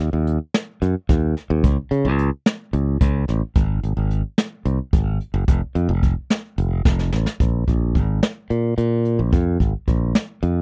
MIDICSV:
0, 0, Header, 1, 3, 480
1, 0, Start_track
1, 0, Key_signature, -5, "minor"
1, 0, Tempo, 548948
1, 1434, Time_signature, 7, 3, 24, 8
1, 9284, End_track
2, 0, Start_track
2, 0, Title_t, "Fingered electric bass"
2, 0, Program_c, 0, 33
2, 0, Note_on_c, 0, 39, 73
2, 101, Note_off_c, 0, 39, 0
2, 113, Note_on_c, 0, 39, 80
2, 325, Note_off_c, 0, 39, 0
2, 715, Note_on_c, 0, 42, 79
2, 820, Note_off_c, 0, 42, 0
2, 956, Note_on_c, 0, 39, 84
2, 1166, Note_off_c, 0, 39, 0
2, 1313, Note_on_c, 0, 39, 86
2, 1419, Note_off_c, 0, 39, 0
2, 1433, Note_on_c, 0, 37, 106
2, 1539, Note_off_c, 0, 37, 0
2, 1670, Note_on_c, 0, 49, 83
2, 1791, Note_on_c, 0, 37, 92
2, 1804, Note_off_c, 0, 49, 0
2, 2003, Note_off_c, 0, 37, 0
2, 2389, Note_on_c, 0, 37, 86
2, 2602, Note_off_c, 0, 37, 0
2, 2631, Note_on_c, 0, 37, 88
2, 2843, Note_off_c, 0, 37, 0
2, 2875, Note_on_c, 0, 33, 92
2, 2979, Note_off_c, 0, 33, 0
2, 3111, Note_on_c, 0, 32, 103
2, 3322, Note_off_c, 0, 32, 0
2, 3353, Note_on_c, 0, 32, 78
2, 3458, Note_off_c, 0, 32, 0
2, 3470, Note_on_c, 0, 32, 84
2, 3682, Note_off_c, 0, 32, 0
2, 4070, Note_on_c, 0, 36, 82
2, 4176, Note_off_c, 0, 36, 0
2, 4312, Note_on_c, 0, 32, 90
2, 4523, Note_off_c, 0, 32, 0
2, 4667, Note_on_c, 0, 30, 95
2, 4775, Note_off_c, 0, 30, 0
2, 4792, Note_on_c, 0, 29, 102
2, 4898, Note_off_c, 0, 29, 0
2, 5030, Note_on_c, 0, 41, 81
2, 5148, Note_on_c, 0, 29, 94
2, 5161, Note_off_c, 0, 41, 0
2, 5361, Note_off_c, 0, 29, 0
2, 5754, Note_on_c, 0, 29, 88
2, 5964, Note_off_c, 0, 29, 0
2, 5992, Note_on_c, 0, 29, 86
2, 6203, Note_off_c, 0, 29, 0
2, 6232, Note_on_c, 0, 33, 83
2, 6338, Note_off_c, 0, 33, 0
2, 6473, Note_on_c, 0, 34, 84
2, 6684, Note_off_c, 0, 34, 0
2, 6713, Note_on_c, 0, 34, 75
2, 6953, Note_on_c, 0, 32, 79
2, 6966, Note_off_c, 0, 34, 0
2, 7164, Note_off_c, 0, 32, 0
2, 7435, Note_on_c, 0, 46, 74
2, 7646, Note_off_c, 0, 46, 0
2, 7674, Note_on_c, 0, 46, 80
2, 8037, Note_on_c, 0, 34, 74
2, 8050, Note_off_c, 0, 46, 0
2, 8142, Note_off_c, 0, 34, 0
2, 8155, Note_on_c, 0, 41, 88
2, 8366, Note_off_c, 0, 41, 0
2, 8394, Note_on_c, 0, 32, 81
2, 8501, Note_off_c, 0, 32, 0
2, 8638, Note_on_c, 0, 34, 78
2, 8848, Note_off_c, 0, 34, 0
2, 9117, Note_on_c, 0, 41, 81
2, 9284, Note_off_c, 0, 41, 0
2, 9284, End_track
3, 0, Start_track
3, 0, Title_t, "Drums"
3, 0, Note_on_c, 9, 42, 59
3, 83, Note_off_c, 9, 42, 0
3, 235, Note_on_c, 9, 42, 61
3, 323, Note_off_c, 9, 42, 0
3, 475, Note_on_c, 9, 38, 102
3, 475, Note_on_c, 9, 42, 79
3, 563, Note_off_c, 9, 38, 0
3, 563, Note_off_c, 9, 42, 0
3, 715, Note_on_c, 9, 38, 32
3, 715, Note_on_c, 9, 42, 59
3, 803, Note_off_c, 9, 38, 0
3, 803, Note_off_c, 9, 42, 0
3, 955, Note_on_c, 9, 36, 101
3, 955, Note_on_c, 9, 38, 36
3, 955, Note_on_c, 9, 42, 84
3, 1042, Note_off_c, 9, 36, 0
3, 1042, Note_off_c, 9, 38, 0
3, 1042, Note_off_c, 9, 42, 0
3, 1196, Note_on_c, 9, 38, 32
3, 1196, Note_on_c, 9, 42, 61
3, 1283, Note_off_c, 9, 38, 0
3, 1283, Note_off_c, 9, 42, 0
3, 1433, Note_on_c, 9, 36, 105
3, 1433, Note_on_c, 9, 42, 81
3, 1520, Note_off_c, 9, 36, 0
3, 1520, Note_off_c, 9, 42, 0
3, 1672, Note_on_c, 9, 42, 63
3, 1760, Note_off_c, 9, 42, 0
3, 1912, Note_on_c, 9, 42, 63
3, 2000, Note_off_c, 9, 42, 0
3, 2152, Note_on_c, 9, 38, 100
3, 2152, Note_on_c, 9, 42, 81
3, 2239, Note_off_c, 9, 38, 0
3, 2239, Note_off_c, 9, 42, 0
3, 2391, Note_on_c, 9, 42, 58
3, 2479, Note_off_c, 9, 42, 0
3, 2631, Note_on_c, 9, 36, 112
3, 2631, Note_on_c, 9, 42, 85
3, 2718, Note_off_c, 9, 36, 0
3, 2718, Note_off_c, 9, 42, 0
3, 2869, Note_on_c, 9, 38, 33
3, 2869, Note_on_c, 9, 42, 60
3, 2956, Note_off_c, 9, 38, 0
3, 2956, Note_off_c, 9, 42, 0
3, 3108, Note_on_c, 9, 42, 77
3, 3111, Note_on_c, 9, 36, 100
3, 3196, Note_off_c, 9, 42, 0
3, 3198, Note_off_c, 9, 36, 0
3, 3353, Note_on_c, 9, 42, 55
3, 3440, Note_off_c, 9, 42, 0
3, 3590, Note_on_c, 9, 42, 62
3, 3677, Note_off_c, 9, 42, 0
3, 3829, Note_on_c, 9, 38, 98
3, 3829, Note_on_c, 9, 42, 75
3, 3917, Note_off_c, 9, 38, 0
3, 3917, Note_off_c, 9, 42, 0
3, 4068, Note_on_c, 9, 42, 56
3, 4155, Note_off_c, 9, 42, 0
3, 4310, Note_on_c, 9, 42, 82
3, 4311, Note_on_c, 9, 36, 110
3, 4397, Note_off_c, 9, 42, 0
3, 4399, Note_off_c, 9, 36, 0
3, 4551, Note_on_c, 9, 42, 57
3, 4639, Note_off_c, 9, 42, 0
3, 4790, Note_on_c, 9, 42, 79
3, 4792, Note_on_c, 9, 36, 101
3, 4877, Note_off_c, 9, 42, 0
3, 4879, Note_off_c, 9, 36, 0
3, 5031, Note_on_c, 9, 42, 60
3, 5118, Note_off_c, 9, 42, 0
3, 5271, Note_on_c, 9, 42, 64
3, 5272, Note_on_c, 9, 36, 77
3, 5358, Note_off_c, 9, 42, 0
3, 5360, Note_off_c, 9, 36, 0
3, 5512, Note_on_c, 9, 38, 105
3, 5512, Note_on_c, 9, 42, 82
3, 5599, Note_off_c, 9, 38, 0
3, 5599, Note_off_c, 9, 42, 0
3, 5753, Note_on_c, 9, 42, 61
3, 5841, Note_off_c, 9, 42, 0
3, 5993, Note_on_c, 9, 36, 115
3, 5993, Note_on_c, 9, 38, 65
3, 6080, Note_off_c, 9, 36, 0
3, 6080, Note_off_c, 9, 38, 0
3, 6112, Note_on_c, 9, 38, 57
3, 6199, Note_off_c, 9, 38, 0
3, 6229, Note_on_c, 9, 38, 82
3, 6317, Note_off_c, 9, 38, 0
3, 6349, Note_on_c, 9, 38, 78
3, 6437, Note_off_c, 9, 38, 0
3, 6469, Note_on_c, 9, 42, 76
3, 6472, Note_on_c, 9, 36, 96
3, 6557, Note_off_c, 9, 42, 0
3, 6559, Note_off_c, 9, 36, 0
3, 6712, Note_on_c, 9, 36, 71
3, 6712, Note_on_c, 9, 42, 52
3, 6800, Note_off_c, 9, 36, 0
3, 6800, Note_off_c, 9, 42, 0
3, 6953, Note_on_c, 9, 36, 73
3, 6953, Note_on_c, 9, 42, 51
3, 7040, Note_off_c, 9, 36, 0
3, 7041, Note_off_c, 9, 42, 0
3, 7194, Note_on_c, 9, 38, 101
3, 7194, Note_on_c, 9, 42, 69
3, 7281, Note_off_c, 9, 38, 0
3, 7281, Note_off_c, 9, 42, 0
3, 7433, Note_on_c, 9, 42, 52
3, 7520, Note_off_c, 9, 42, 0
3, 7673, Note_on_c, 9, 42, 80
3, 7761, Note_off_c, 9, 42, 0
3, 7914, Note_on_c, 9, 42, 53
3, 8001, Note_off_c, 9, 42, 0
3, 8155, Note_on_c, 9, 36, 101
3, 8155, Note_on_c, 9, 42, 72
3, 8242, Note_off_c, 9, 42, 0
3, 8243, Note_off_c, 9, 36, 0
3, 8396, Note_on_c, 9, 36, 71
3, 8397, Note_on_c, 9, 42, 57
3, 8483, Note_off_c, 9, 36, 0
3, 8484, Note_off_c, 9, 42, 0
3, 8636, Note_on_c, 9, 36, 71
3, 8637, Note_on_c, 9, 42, 57
3, 8724, Note_off_c, 9, 36, 0
3, 8724, Note_off_c, 9, 42, 0
3, 8876, Note_on_c, 9, 38, 99
3, 8876, Note_on_c, 9, 42, 77
3, 8963, Note_off_c, 9, 38, 0
3, 8963, Note_off_c, 9, 42, 0
3, 9116, Note_on_c, 9, 42, 55
3, 9203, Note_off_c, 9, 42, 0
3, 9284, End_track
0, 0, End_of_file